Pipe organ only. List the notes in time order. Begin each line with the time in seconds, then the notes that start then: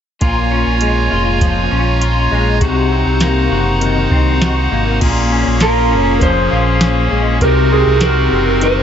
0.21 F4 C#5 G#5 A#5
2.63 D#4 C5 F#5
5.01 A#3 C#4 G#4
7.41 C3 C4 D#4 F#4 A#4